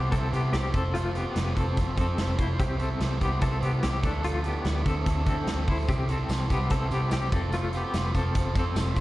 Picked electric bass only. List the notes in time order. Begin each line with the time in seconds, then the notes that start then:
0.12 C2
0.33 C3
0.53 C2
0.74 F1
1.36 F1
1.57 F1
1.77 F1
1.97 F2
2.18 F1
2.39 F1
2.60 C2
3.00 C2
3.21 C2
3.42 C2
3.62 C3
3.83 C2
4.03 D2
4.65 D2
4.86 D2
5.06 D2
5.27 D3
5.47 D2
5.68 D2
5.89 C2
6.29 C2
6.50 C2
6.71 C2
6.91 C3
7.12 C2
7.32 F1
7.94 F1
8.15 F1
8.35 F1
8.55 F2
8.76 F1
8.96 F1